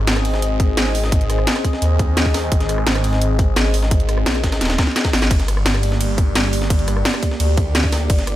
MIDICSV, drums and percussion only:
0, 0, Header, 1, 2, 480
1, 0, Start_track
1, 0, Tempo, 348837
1, 1544, Time_signature, 4, 2, 24, 8
1, 11502, End_track
2, 0, Start_track
2, 0, Title_t, "Drums"
2, 102, Note_on_c, 9, 38, 123
2, 102, Note_on_c, 9, 42, 93
2, 103, Note_off_c, 9, 38, 0
2, 103, Note_off_c, 9, 42, 0
2, 103, Note_on_c, 9, 38, 125
2, 103, Note_on_c, 9, 42, 94
2, 223, Note_off_c, 9, 42, 0
2, 223, Note_on_c, 9, 37, 46
2, 223, Note_on_c, 9, 42, 35
2, 240, Note_off_c, 9, 38, 0
2, 343, Note_off_c, 9, 42, 0
2, 343, Note_on_c, 9, 42, 67
2, 343, Note_on_c, 9, 46, 84
2, 361, Note_off_c, 9, 37, 0
2, 464, Note_on_c, 9, 38, 55
2, 481, Note_off_c, 9, 42, 0
2, 481, Note_off_c, 9, 46, 0
2, 583, Note_on_c, 9, 42, 92
2, 601, Note_off_c, 9, 38, 0
2, 721, Note_off_c, 9, 42, 0
2, 823, Note_on_c, 9, 36, 107
2, 823, Note_on_c, 9, 42, 66
2, 824, Note_off_c, 9, 42, 0
2, 824, Note_on_c, 9, 42, 70
2, 960, Note_off_c, 9, 36, 0
2, 962, Note_off_c, 9, 42, 0
2, 1063, Note_on_c, 9, 38, 120
2, 1063, Note_on_c, 9, 42, 89
2, 1201, Note_off_c, 9, 38, 0
2, 1201, Note_off_c, 9, 42, 0
2, 1304, Note_on_c, 9, 42, 69
2, 1304, Note_on_c, 9, 46, 82
2, 1425, Note_on_c, 9, 38, 58
2, 1441, Note_off_c, 9, 46, 0
2, 1442, Note_off_c, 9, 42, 0
2, 1543, Note_on_c, 9, 36, 118
2, 1544, Note_on_c, 9, 42, 100
2, 1545, Note_off_c, 9, 42, 0
2, 1545, Note_on_c, 9, 42, 89
2, 1562, Note_off_c, 9, 38, 0
2, 1665, Note_off_c, 9, 42, 0
2, 1665, Note_on_c, 9, 42, 38
2, 1681, Note_off_c, 9, 36, 0
2, 1784, Note_off_c, 9, 42, 0
2, 1784, Note_on_c, 9, 37, 33
2, 1784, Note_on_c, 9, 42, 66
2, 1905, Note_off_c, 9, 37, 0
2, 1905, Note_on_c, 9, 37, 34
2, 1922, Note_off_c, 9, 42, 0
2, 2024, Note_on_c, 9, 38, 124
2, 2024, Note_on_c, 9, 42, 89
2, 2025, Note_off_c, 9, 38, 0
2, 2025, Note_off_c, 9, 42, 0
2, 2025, Note_on_c, 9, 38, 118
2, 2025, Note_on_c, 9, 42, 91
2, 2042, Note_off_c, 9, 37, 0
2, 2145, Note_off_c, 9, 42, 0
2, 2145, Note_on_c, 9, 37, 46
2, 2145, Note_on_c, 9, 42, 38
2, 2163, Note_off_c, 9, 38, 0
2, 2264, Note_off_c, 9, 42, 0
2, 2264, Note_on_c, 9, 36, 61
2, 2264, Note_on_c, 9, 42, 66
2, 2265, Note_off_c, 9, 42, 0
2, 2265, Note_on_c, 9, 42, 71
2, 2283, Note_off_c, 9, 37, 0
2, 2384, Note_on_c, 9, 38, 49
2, 2401, Note_off_c, 9, 36, 0
2, 2403, Note_off_c, 9, 42, 0
2, 2504, Note_on_c, 9, 42, 88
2, 2505, Note_off_c, 9, 42, 0
2, 2505, Note_on_c, 9, 42, 97
2, 2522, Note_off_c, 9, 38, 0
2, 2642, Note_off_c, 9, 42, 0
2, 2744, Note_on_c, 9, 36, 104
2, 2745, Note_on_c, 9, 42, 70
2, 2881, Note_off_c, 9, 36, 0
2, 2882, Note_off_c, 9, 42, 0
2, 2984, Note_on_c, 9, 42, 63
2, 2985, Note_off_c, 9, 42, 0
2, 2985, Note_on_c, 9, 38, 119
2, 2985, Note_on_c, 9, 42, 95
2, 3104, Note_on_c, 9, 36, 60
2, 3122, Note_off_c, 9, 38, 0
2, 3122, Note_off_c, 9, 42, 0
2, 3224, Note_on_c, 9, 38, 106
2, 3224, Note_on_c, 9, 42, 80
2, 3224, Note_on_c, 9, 46, 84
2, 3241, Note_off_c, 9, 36, 0
2, 3362, Note_off_c, 9, 38, 0
2, 3362, Note_off_c, 9, 42, 0
2, 3362, Note_off_c, 9, 46, 0
2, 3463, Note_on_c, 9, 42, 101
2, 3464, Note_off_c, 9, 42, 0
2, 3464, Note_on_c, 9, 36, 114
2, 3464, Note_on_c, 9, 42, 90
2, 3584, Note_off_c, 9, 42, 0
2, 3584, Note_on_c, 9, 38, 55
2, 3584, Note_on_c, 9, 42, 39
2, 3602, Note_off_c, 9, 36, 0
2, 3704, Note_off_c, 9, 42, 0
2, 3704, Note_on_c, 9, 37, 33
2, 3704, Note_on_c, 9, 42, 70
2, 3705, Note_off_c, 9, 42, 0
2, 3705, Note_on_c, 9, 42, 69
2, 3722, Note_off_c, 9, 38, 0
2, 3824, Note_off_c, 9, 37, 0
2, 3824, Note_on_c, 9, 37, 34
2, 3843, Note_off_c, 9, 42, 0
2, 3943, Note_on_c, 9, 38, 115
2, 3943, Note_on_c, 9, 42, 99
2, 3945, Note_off_c, 9, 38, 0
2, 3945, Note_off_c, 9, 42, 0
2, 3945, Note_on_c, 9, 38, 120
2, 3945, Note_on_c, 9, 42, 95
2, 3962, Note_off_c, 9, 37, 0
2, 4064, Note_off_c, 9, 42, 0
2, 4064, Note_on_c, 9, 37, 47
2, 4064, Note_on_c, 9, 42, 38
2, 4082, Note_off_c, 9, 38, 0
2, 4184, Note_off_c, 9, 42, 0
2, 4184, Note_on_c, 9, 42, 69
2, 4184, Note_on_c, 9, 46, 84
2, 4202, Note_off_c, 9, 37, 0
2, 4304, Note_on_c, 9, 38, 54
2, 4321, Note_off_c, 9, 46, 0
2, 4322, Note_off_c, 9, 42, 0
2, 4424, Note_on_c, 9, 42, 99
2, 4441, Note_off_c, 9, 38, 0
2, 4562, Note_off_c, 9, 42, 0
2, 4664, Note_on_c, 9, 36, 106
2, 4664, Note_on_c, 9, 42, 69
2, 4665, Note_off_c, 9, 42, 0
2, 4665, Note_on_c, 9, 42, 72
2, 4802, Note_off_c, 9, 36, 0
2, 4802, Note_off_c, 9, 42, 0
2, 4903, Note_on_c, 9, 38, 122
2, 4903, Note_on_c, 9, 42, 89
2, 4905, Note_off_c, 9, 38, 0
2, 4905, Note_off_c, 9, 42, 0
2, 4905, Note_on_c, 9, 38, 112
2, 4905, Note_on_c, 9, 42, 99
2, 5042, Note_off_c, 9, 38, 0
2, 5042, Note_off_c, 9, 42, 0
2, 5144, Note_on_c, 9, 42, 68
2, 5144, Note_on_c, 9, 46, 84
2, 5264, Note_on_c, 9, 38, 58
2, 5282, Note_off_c, 9, 42, 0
2, 5282, Note_off_c, 9, 46, 0
2, 5383, Note_on_c, 9, 42, 101
2, 5384, Note_off_c, 9, 42, 0
2, 5384, Note_on_c, 9, 36, 119
2, 5384, Note_on_c, 9, 42, 88
2, 5401, Note_off_c, 9, 38, 0
2, 5503, Note_off_c, 9, 42, 0
2, 5503, Note_on_c, 9, 42, 39
2, 5521, Note_off_c, 9, 36, 0
2, 5624, Note_off_c, 9, 42, 0
2, 5624, Note_on_c, 9, 37, 34
2, 5624, Note_on_c, 9, 42, 71
2, 5744, Note_off_c, 9, 37, 0
2, 5744, Note_on_c, 9, 37, 35
2, 5762, Note_off_c, 9, 42, 0
2, 5864, Note_on_c, 9, 38, 121
2, 5864, Note_on_c, 9, 42, 94
2, 5882, Note_off_c, 9, 37, 0
2, 5985, Note_off_c, 9, 42, 0
2, 5985, Note_on_c, 9, 37, 48
2, 5985, Note_on_c, 9, 42, 39
2, 6002, Note_off_c, 9, 38, 0
2, 6104, Note_off_c, 9, 42, 0
2, 6104, Note_on_c, 9, 36, 59
2, 6104, Note_on_c, 9, 38, 108
2, 6104, Note_on_c, 9, 42, 82
2, 6105, Note_off_c, 9, 42, 0
2, 6105, Note_on_c, 9, 42, 72
2, 6122, Note_off_c, 9, 37, 0
2, 6224, Note_off_c, 9, 38, 0
2, 6224, Note_off_c, 9, 42, 0
2, 6224, Note_on_c, 9, 38, 107
2, 6224, Note_on_c, 9, 42, 85
2, 6241, Note_off_c, 9, 36, 0
2, 6344, Note_off_c, 9, 38, 0
2, 6344, Note_off_c, 9, 42, 0
2, 6344, Note_on_c, 9, 38, 92
2, 6344, Note_on_c, 9, 42, 70
2, 6345, Note_off_c, 9, 38, 0
2, 6345, Note_off_c, 9, 42, 0
2, 6345, Note_on_c, 9, 38, 62
2, 6345, Note_on_c, 9, 42, 102
2, 6403, Note_off_c, 9, 38, 0
2, 6403, Note_off_c, 9, 42, 0
2, 6403, Note_on_c, 9, 38, 92
2, 6403, Note_on_c, 9, 42, 70
2, 6465, Note_off_c, 9, 38, 0
2, 6465, Note_off_c, 9, 42, 0
2, 6465, Note_on_c, 9, 38, 58
2, 6465, Note_on_c, 9, 42, 83
2, 6584, Note_off_c, 9, 38, 0
2, 6584, Note_off_c, 9, 42, 0
2, 6584, Note_on_c, 9, 36, 104
2, 6584, Note_on_c, 9, 38, 78
2, 6584, Note_on_c, 9, 42, 73
2, 6705, Note_off_c, 9, 38, 0
2, 6705, Note_on_c, 9, 38, 66
2, 6721, Note_off_c, 9, 36, 0
2, 6722, Note_off_c, 9, 42, 0
2, 6824, Note_off_c, 9, 38, 0
2, 6824, Note_on_c, 9, 38, 109
2, 6824, Note_on_c, 9, 42, 81
2, 6825, Note_off_c, 9, 38, 0
2, 6825, Note_off_c, 9, 42, 0
2, 6825, Note_on_c, 9, 38, 88
2, 6825, Note_on_c, 9, 42, 98
2, 6944, Note_off_c, 9, 38, 0
2, 6944, Note_off_c, 9, 42, 0
2, 6944, Note_on_c, 9, 36, 62
2, 6944, Note_on_c, 9, 38, 110
2, 6944, Note_on_c, 9, 42, 80
2, 7064, Note_off_c, 9, 38, 0
2, 7064, Note_on_c, 9, 38, 98
2, 7064, Note_on_c, 9, 46, 78
2, 7081, Note_off_c, 9, 36, 0
2, 7081, Note_off_c, 9, 42, 0
2, 7184, Note_on_c, 9, 42, 63
2, 7185, Note_off_c, 9, 38, 0
2, 7185, Note_off_c, 9, 42, 0
2, 7185, Note_on_c, 9, 38, 90
2, 7185, Note_on_c, 9, 42, 39
2, 7202, Note_off_c, 9, 46, 0
2, 7303, Note_on_c, 9, 36, 122
2, 7304, Note_off_c, 9, 42, 0
2, 7304, Note_on_c, 9, 42, 104
2, 7304, Note_on_c, 9, 51, 81
2, 7323, Note_off_c, 9, 38, 0
2, 7423, Note_on_c, 9, 38, 54
2, 7425, Note_off_c, 9, 42, 0
2, 7425, Note_on_c, 9, 42, 40
2, 7441, Note_off_c, 9, 36, 0
2, 7442, Note_off_c, 9, 51, 0
2, 7544, Note_off_c, 9, 42, 0
2, 7544, Note_on_c, 9, 42, 70
2, 7545, Note_off_c, 9, 42, 0
2, 7545, Note_on_c, 9, 37, 35
2, 7545, Note_on_c, 9, 42, 69
2, 7545, Note_on_c, 9, 51, 55
2, 7561, Note_off_c, 9, 38, 0
2, 7665, Note_off_c, 9, 37, 0
2, 7665, Note_on_c, 9, 37, 35
2, 7683, Note_off_c, 9, 42, 0
2, 7683, Note_off_c, 9, 51, 0
2, 7784, Note_on_c, 9, 38, 120
2, 7784, Note_on_c, 9, 42, 101
2, 7784, Note_on_c, 9, 51, 78
2, 7802, Note_off_c, 9, 37, 0
2, 7905, Note_off_c, 9, 42, 0
2, 7905, Note_on_c, 9, 37, 50
2, 7905, Note_on_c, 9, 42, 40
2, 7922, Note_off_c, 9, 38, 0
2, 7922, Note_off_c, 9, 51, 0
2, 8024, Note_off_c, 9, 42, 0
2, 8024, Note_on_c, 9, 42, 70
2, 8024, Note_on_c, 9, 51, 54
2, 8025, Note_on_c, 9, 46, 80
2, 8042, Note_off_c, 9, 37, 0
2, 8145, Note_on_c, 9, 38, 53
2, 8161, Note_off_c, 9, 42, 0
2, 8161, Note_off_c, 9, 51, 0
2, 8162, Note_off_c, 9, 46, 0
2, 8264, Note_on_c, 9, 42, 101
2, 8264, Note_on_c, 9, 51, 77
2, 8282, Note_off_c, 9, 38, 0
2, 8402, Note_off_c, 9, 42, 0
2, 8402, Note_off_c, 9, 51, 0
2, 8503, Note_on_c, 9, 36, 109
2, 8505, Note_on_c, 9, 42, 71
2, 8505, Note_on_c, 9, 51, 53
2, 8641, Note_off_c, 9, 36, 0
2, 8642, Note_off_c, 9, 42, 0
2, 8642, Note_off_c, 9, 51, 0
2, 8744, Note_on_c, 9, 38, 116
2, 8744, Note_on_c, 9, 42, 97
2, 8744, Note_on_c, 9, 51, 74
2, 8882, Note_off_c, 9, 38, 0
2, 8882, Note_off_c, 9, 42, 0
2, 8882, Note_off_c, 9, 51, 0
2, 8984, Note_on_c, 9, 46, 76
2, 8984, Note_on_c, 9, 51, 53
2, 8985, Note_on_c, 9, 42, 69
2, 9104, Note_on_c, 9, 38, 59
2, 9122, Note_off_c, 9, 42, 0
2, 9122, Note_off_c, 9, 46, 0
2, 9122, Note_off_c, 9, 51, 0
2, 9223, Note_on_c, 9, 36, 127
2, 9224, Note_on_c, 9, 42, 100
2, 9224, Note_on_c, 9, 51, 78
2, 9225, Note_off_c, 9, 42, 0
2, 9225, Note_on_c, 9, 42, 89
2, 9242, Note_off_c, 9, 38, 0
2, 9344, Note_off_c, 9, 42, 0
2, 9344, Note_on_c, 9, 42, 37
2, 9361, Note_off_c, 9, 36, 0
2, 9361, Note_off_c, 9, 51, 0
2, 9464, Note_off_c, 9, 42, 0
2, 9464, Note_on_c, 9, 37, 35
2, 9464, Note_on_c, 9, 42, 67
2, 9464, Note_on_c, 9, 51, 52
2, 9465, Note_off_c, 9, 42, 0
2, 9465, Note_on_c, 9, 42, 70
2, 9584, Note_off_c, 9, 37, 0
2, 9584, Note_on_c, 9, 37, 37
2, 9602, Note_off_c, 9, 51, 0
2, 9603, Note_off_c, 9, 42, 0
2, 9704, Note_on_c, 9, 38, 127
2, 9704, Note_on_c, 9, 42, 95
2, 9704, Note_on_c, 9, 51, 73
2, 9722, Note_off_c, 9, 37, 0
2, 9823, Note_off_c, 9, 42, 0
2, 9823, Note_on_c, 9, 37, 51
2, 9823, Note_on_c, 9, 42, 38
2, 9841, Note_off_c, 9, 38, 0
2, 9841, Note_off_c, 9, 51, 0
2, 9943, Note_off_c, 9, 42, 0
2, 9943, Note_on_c, 9, 36, 66
2, 9943, Note_on_c, 9, 42, 69
2, 9943, Note_on_c, 9, 51, 52
2, 9945, Note_off_c, 9, 42, 0
2, 9945, Note_on_c, 9, 42, 70
2, 9961, Note_off_c, 9, 37, 0
2, 10065, Note_on_c, 9, 38, 49
2, 10081, Note_off_c, 9, 36, 0
2, 10081, Note_off_c, 9, 51, 0
2, 10082, Note_off_c, 9, 42, 0
2, 10182, Note_on_c, 9, 42, 96
2, 10182, Note_on_c, 9, 51, 75
2, 10185, Note_off_c, 9, 42, 0
2, 10185, Note_on_c, 9, 42, 89
2, 10202, Note_off_c, 9, 38, 0
2, 10320, Note_off_c, 9, 51, 0
2, 10322, Note_off_c, 9, 42, 0
2, 10423, Note_on_c, 9, 36, 112
2, 10423, Note_on_c, 9, 42, 69
2, 10423, Note_on_c, 9, 51, 54
2, 10425, Note_off_c, 9, 42, 0
2, 10425, Note_on_c, 9, 42, 71
2, 10560, Note_off_c, 9, 51, 0
2, 10561, Note_off_c, 9, 36, 0
2, 10563, Note_off_c, 9, 42, 0
2, 10663, Note_on_c, 9, 38, 126
2, 10663, Note_on_c, 9, 42, 94
2, 10663, Note_on_c, 9, 51, 70
2, 10666, Note_off_c, 9, 42, 0
2, 10666, Note_on_c, 9, 42, 64
2, 10783, Note_on_c, 9, 36, 66
2, 10800, Note_off_c, 9, 38, 0
2, 10800, Note_off_c, 9, 51, 0
2, 10803, Note_off_c, 9, 42, 0
2, 10903, Note_on_c, 9, 46, 76
2, 10903, Note_on_c, 9, 51, 52
2, 10905, Note_on_c, 9, 38, 107
2, 10905, Note_on_c, 9, 42, 79
2, 10921, Note_off_c, 9, 36, 0
2, 11041, Note_off_c, 9, 46, 0
2, 11041, Note_off_c, 9, 51, 0
2, 11043, Note_off_c, 9, 38, 0
2, 11043, Note_off_c, 9, 42, 0
2, 11142, Note_on_c, 9, 42, 96
2, 11142, Note_on_c, 9, 51, 77
2, 11143, Note_on_c, 9, 36, 127
2, 11145, Note_off_c, 9, 42, 0
2, 11145, Note_on_c, 9, 42, 90
2, 11263, Note_off_c, 9, 42, 0
2, 11263, Note_on_c, 9, 42, 36
2, 11264, Note_on_c, 9, 38, 54
2, 11280, Note_off_c, 9, 51, 0
2, 11281, Note_off_c, 9, 36, 0
2, 11383, Note_off_c, 9, 42, 0
2, 11383, Note_on_c, 9, 37, 36
2, 11383, Note_on_c, 9, 42, 66
2, 11383, Note_on_c, 9, 51, 51
2, 11384, Note_off_c, 9, 42, 0
2, 11384, Note_on_c, 9, 42, 69
2, 11402, Note_off_c, 9, 38, 0
2, 11502, Note_off_c, 9, 37, 0
2, 11502, Note_off_c, 9, 42, 0
2, 11502, Note_off_c, 9, 51, 0
2, 11502, End_track
0, 0, End_of_file